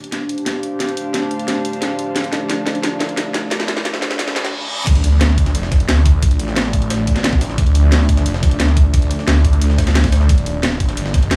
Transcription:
Already playing: A3 D4 F4 G4 C5 D5, riser
0.04 F5, closed hi-hat
0.12 A5, snare, closed hi-hat
0.29 closed hi-hat
0.38 closed hi-hat
0.46 snare, closed hi-hat
0.63 closed hi-hat
0.80 snare, closed hi-hat
0.89 closed hi-hat
0.97 closed hi-hat
1.14 snare, closed hi-hat
1.31 closed hi-hat
1.39 closed hi-hat
1.48 snare, closed hi-hat
1.65 closed hi-hat
1.73 closed hi-hat
1.82 snare, closed hi-hat
1.99 closed hi-hat
2.16 snare, closed hi-hat
2.24 closed hi-hat
2.33 snare, closed hi-hat
2.50 snare, closed hi-hat
2.67 snare, closed hi-hat
2.75 closed hi-hat
2.83 snare, closed hi-hat
3.00 snare, closed hi-hat
3.09 closed hi-hat
3.17 snare, closed hi-hat
3.34 snare, open hi-hat
3.51 snare, closed hi-hat
3.60 snare, closed hi-hat
3.68 snare, closed hi-hat
3.77 snare
3.85 snare, closed hi-hat
3.94 snare
4.02 snare, closed hi-hat
4.11 snare, closed hi-hat
4.19 snare, closed hi-hat, reverse cymbal
4.28 snare
4.36 snare, closed hi-hat
4.45 snare, closed hi-hat
4.87 D2 A3 D4 F4 D5, kick, closed hi-hat, ride, crash, impact
4.95 closed hi-hat
5.04 closed hi-hat, ride
5.21 D2, snare, closed hi-hat, ride
5.38 kick, closed hi-hat, ride
5.46 snare, closed hi-hat
5.55 F1, closed hi-hat, ride
5.63 snare
5.72 kick, snare, closed hi-hat, ride
5.80 closed hi-hat, ride
5.89 D2, snare, closed hi-hat, ride
5.97 ride
6.06 kick, open hi-hat, ride
6.23 kick, closed hi-hat, ride
6.31 closed hi-hat
6.39 A1, closed hi-hat, ride
6.48 snare
6.56 snare, closed hi-hat, ride
6.73 kick, closed hi-hat, ride
6.82 closed hi-hat
6.90 snare, closed hi-hat, ride
7.07 kick, closed hi-hat, ride
7.16 snare, closed hi-hat
7.24 snare, closed hi-hat, ride
7.33 kick
7.41 snare, open hi-hat, ride
7.50 snare
7.58 D2, kick, closed hi-hat, ride
7.67 closed hi-hat
7.75 closed hi-hat, ride
7.92 D2, snare, closed hi-hat, ride
8.09 kick, closed hi-hat, ride
8.17 snare, closed hi-hat
8.26 F1, closed hi-hat, ride
8.34 snare
8.43 kick, snare, closed hi-hat, ride
8.51 closed hi-hat, ride
8.60 D2, snare, closed hi-hat, ride
8.68 ride
8.77 kick, open hi-hat, ride
8.94 kick, closed hi-hat, ride
9.02 closed hi-hat
9.11 closed hi-hat, ride
9.19 snare
9.28 D2, snare, closed hi-hat, ride
9.45 kick, closed hi-hat, ride
9.53 closed hi-hat
9.62 D2, closed hi-hat, ride
9.70 snare
9.78 kick, snare, closed hi-hat, ride
9.87 snare, closed hi-hat, ride
9.95 snare, closed hi-hat, ride
10.04 kick, snare, ride
10.12 D2, snare, open hi-hat, ride
10.21 snare
10.29 D#1 A#3 D#4 G4 D#5, kick, closed hi-hat, ride
10.38 closed hi-hat
10.46 closed hi-hat, ride
10.63 D#1, snare, closed hi-hat, ride
10.80 kick, closed hi-hat, ride
10.89 snare, closed hi-hat
10.97 G1, closed hi-hat, ride
11.06 snare
11.14 kick, snare, closed hi-hat, ride
11.23 closed hi-hat, ride
11.31 D#2, snare, closed hi-hat, ride

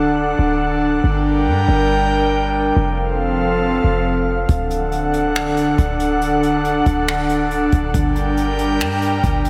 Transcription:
Already playing: D1 D3 D4 A4 F#5
0.39 D1
1.03 G1 G3 A#4 G5
1.47 G2
1.68 G1
2.76 F1 F3 C4 A4 F5
3.84 F1
4.49 D1 D3 D4 A4 F#5, kick, closed hi-hat
4.70 closed hi-hat
4.92 closed hi-hat
5.13 closed hi-hat
5.35 finger snap, closed hi-hat
5.57 closed hi-hat
5.78 D1, kick, closed hi-hat
6.00 closed hi-hat
6.22 closed hi-hat
6.43 closed hi-hat
6.65 closed hi-hat
6.86 D1, kick, closed hi-hat
7.08 finger snap, closed hi-hat
7.29 closed hi-hat
7.51 closed hi-hat
7.72 D1, kick, closed hi-hat
7.94 G1 G3 A#4 G5, kick, closed hi-hat
8.16 closed hi-hat
8.37 closed hi-hat
8.59 closed hi-hat
8.80 G2, finger snap, closed hi-hat
9.02 closed hi-hat
9.23 G1, kick, closed hi-hat
9.45 closed hi-hat

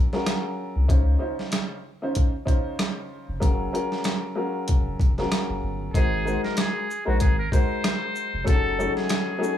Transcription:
0.13 F#3 C#4 F4 G#4 A#4, snare
0.26 cross-stick, snare, closed hi-hat
0.76 C2
0.88 C#2 C#3 C#4 D#4 F4 C5, kick, closed hi-hat
1.19 C#3 C#4 D#4 F4 C5
1.39 snare
1.52 cross-stick, snare, closed hi-hat
2.02 C#3 C#4 D#4 F4 C5
2.15 kick, closed hi-hat
2.45 C#3 C#4 D#4 F4 C5, kick, closed hi-hat
2.79 cross-stick, snare, closed hi-hat
3.29 F1
3.40 F#1 F#3 C#4 F4 G#4 A#4, kick, closed hi-hat
3.73 F#3 C#4 F4 G#4 A#4, closed hi-hat
3.92 snare
4.04 cross-stick, snare, closed hi-hat
4.35 F#3 C#4 F4 G#4 A#4
4.68 F1, kick, closed hi-hat
5.00 F1, kick, closed hi-hat
5.18 F#3 C#4 F4 G#4 A#4, snare
5.32 cross-stick, snare, closed hi-hat
5.49 F#1
5.63 G1
5.94 G#1 G#3 D#4 F#4 G#4 A#4 C5, kick, closed hi-hat
6.25 G#3 D#4 F#4 A#4 C5, shaker
6.44 A#4, snare
6.57 G#4, cross-stick, snare, closed hi-hat
6.91 shaker
7.05 A#1 G#3 D#4 F#4 A#4 C5
7.20 G#1 G#4, kick, closed hi-hat
7.39 A#4
7.52 G#3 D#4 F#4 A#4 C5, kick, closed hi-hat, shaker
7.84 cross-stick, snare, closed hi-hat
8.15 shaker
8.34 F1
8.44 F#1 F#3 C#4 D#4 G#4 A4, kick, closed hi-hat
8.79 F#3 A3 C#4 D#4 G#4, shaker
8.96 G#4, snare
9.09 cross-stick, snare, closed hi-hat
9.38 F#3 A3 C#4 D#4 G#4
9.43 shaker

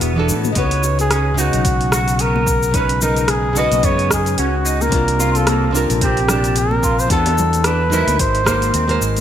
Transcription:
Already playing: E3 B3 D4 F#4 G#4
0.01 E1 B3, open hi-hat, cabasa
0.16 E3 B3 D4 F#4 A4
0.29 A2, cabasa
0.44 high conga, cabasa
0.52 C#2 C#3 G#3 D#4 D#5, open hi-hat
0.56 B3 F#4 B4 C#5, kick, cabasa
0.71 open hi-hat
0.83 high bongo, cabasa
0.99 G#4, open hi-hat, high bongo, cabasa
1.11 C#4, cross-stick, open hi-hat, cabasa
1.34 C#3 G#3 D#4, cabasa
1.38 B3 D#4 F#4
1.53 B1, open hi-hat, cabasa
1.65 kick, open hi-hat, cabasa
1.81 open hi-hat
1.92 F#4, cross-stick, low conga, cabasa
2.08 open hi-hat, cabasa
2.19 B3 A#4, open hi-hat, cabasa
2.36 high conga
2.47 kick, cabasa
2.63 cabasa
2.71 C#3 G#3 C#4 D#4, kick, open hi-hat, cabasa
2.76 F#4 B4
2.89 open hi-hat
3.01 D#4 A#4, high bongo, low conga, cabasa
3.16 open hi-hat, cabasa
3.28 G#4, cross-stick, open hi-hat, cabasa
3.53 C#3 G#3 D#4 F#4, cabasa
3.58 F#4 B4 D#5
3.72 B1, open hi-hat, high conga, cabasa
3.83 F#2 B3 C#5, kick, open hi-hat, cabasa
3.99 open hi-hat
4.11 G#4, kick, cross-stick, cabasa
4.26 open hi-hat, cabasa
4.38 C#2 C#4 F#4, open hi-hat, cabasa
4.65 D#4, cabasa
4.81 A#4, high conga, cabasa
4.89 C2 C3 C4 D4, kick, open hi-hat, cabasa
4.94 A#3 F4
5.08 open hi-hat
5.19 F4, high bongo, cabasa
5.35 A4, open hi-hat, high bongo, cabasa
5.47 A#3, cross-stick, open hi-hat, cabasa
5.71 C3 C4 D4
5.75 F4 A#4, cabasa
5.90 A#1, open hi-hat, cabasa
6.01 C4 G4, kick, open hi-hat, cabasa
6.17 open hi-hat
6.28 D4, cross-stick, low conga, cabasa
6.44 open hi-hat, cabasa
6.56 A#4, open hi-hat, cabasa
6.71 high conga
6.83 F4, kick, cabasa
6.99 C5, cabasa
7.07 E2 E3 B3 D4, kick, open hi-hat
7.11 B3 F#4 A4, cabasa
7.26 open hi-hat, high bongo
7.38 high bongo, low conga, cabasa
7.53 open hi-hat, high conga, cabasa
7.64 D4 B4, cross-stick, open hi-hat, cabasa
7.90 G#3 D#4 E4 F#4 A#4 C5, low conga, cabasa
8.07 D2, open hi-hat, high conga, cabasa
8.19 G#1 C5, kick, open hi-hat, cabasa
8.35 open hi-hat
8.45 G#3 A#3 D#4 F#4 A#4 C5, kick, cross-stick, high conga, cabasa
8.62 open hi-hat, cabasa
8.74 D#2 C4, open hi-hat, cabasa
8.88 G#3 D#4 F#4 A#4 C5, open hi-hat
9.01 G#1, cabasa
9.17 open hi-hat, cabasa

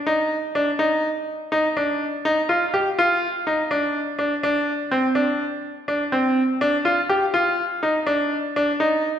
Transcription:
0.07 D#4
0.55 D4
0.79 D#4
1.52 D#4
1.77 D4
2.25 D#4
2.49 F4
2.74 G4
2.99 F4
3.47 D#4
3.71 D4
4.19 D4
4.43 D4
4.91 C4
5.15 D4
5.88 D4
6.12 C4
6.61 D4
6.85 F4
7.09 G4
7.34 F4
7.83 D#4
8.07 D4
8.56 D4
8.80 D#4

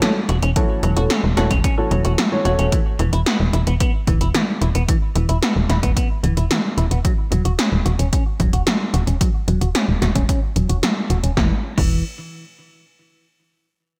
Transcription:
0.02 E3 F#3 A3 C#4 F#4 A4, snare, closed hi-hat
0.29 E1 F#4, closed hi-hat
0.42 E1 C#4, closed hi-hat
0.56 E3 F#3 A3 C#4 F#4 A4, kick, closed hi-hat
0.83 E1 F#3, closed hi-hat
0.96 E1 E3 A3 C#4 F#4 A4, closed hi-hat
1.10 C#4, snare, closed hi-hat
1.24 E1
1.37 E1 E3 A3 C#4 F#4 A4, snare, closed hi-hat
1.51 E1 C#4, kick, closed hi-hat
1.64 C#4, kick, closed hi-hat
1.78 E3 A3 C#4 F#4 A4
1.91 E1 F#3, closed hi-hat
2.05 E1 F#4, closed hi-hat
2.18 F#3, snare, closed hi-hat
2.32 E3 A3 C#4 F#4 C#5
2.45 E1 A3 C#4 F#4 C#5, closed hi-hat
2.59 E1 C#4, closed hi-hat
2.72 E3, kick, closed hi-hat
2.99 E1 E3, closed hi-hat
3.13 E1 E4, closed hi-hat
3.26 B3, snare, closed hi-hat
3.40 E1
3.53 E1 E4, closed hi-hat
3.67 E1 B3, closed hi-hat
3.80 B3, kick, closed hi-hat
4.07 D1 E3, kick, closed hi-hat
4.21 E1 E4, closed hi-hat
4.34 E3, snare, closed hi-hat
4.61 E1 E4, closed hi-hat
4.75 E1 B3, closed hi-hat
4.88 E3, kick, closed hi-hat
5.16 E1 E3, closed hi-hat
5.29 E1 E4, closed hi-hat
5.43 B3, snare, closed hi-hat
5.56 E1
5.69 E1 E4, snare, closed hi-hat
5.83 E1 B3, kick, closed hi-hat
5.97 B3, kick, closed hi-hat
6.23 D1 E3, closed hi-hat
6.37 E1 E4, closed hi-hat
6.51 E3, snare, closed hi-hat
6.77 E1 E4, closed hi-hat
6.91 E1 B3, closed hi-hat
7.05 F#3, kick, closed hi-hat
7.32 E1 F#3, closed hi-hat
7.45 E1 F#4, closed hi-hat
7.59 C#4, snare, closed hi-hat
7.72 E1
7.86 E1 F#4, closed hi-hat
7.99 E1 C#4, closed hi-hat
8.13 C#4, kick, closed hi-hat
8.40 E1 F#3, kick, closed hi-hat
8.53 E1 F#4, closed hi-hat
8.67 F#3, snare, closed hi-hat
8.94 E1 F#4, closed hi-hat
9.07 E1 C#4, closed hi-hat
9.21 F#3, kick, closed hi-hat
9.48 E1 F#3, closed hi-hat
9.61 E1 F#4, closed hi-hat
9.75 C#4, snare, closed hi-hat
9.88 E1
10.02 E1 F#4, snare, closed hi-hat
10.15 E1 C#4, kick, closed hi-hat
10.29 C#4, kick, closed hi-hat
10.56 E1 F#3, closed hi-hat
10.69 E1 F#4, closed hi-hat
10.83 F#3, snare, closed hi-hat
11.10 E1 F#4, closed hi-hat
11.23 E1 C#4, closed hi-hat
11.37 E1 E3, kick, snare
11.78 E1 E3, kick, crash

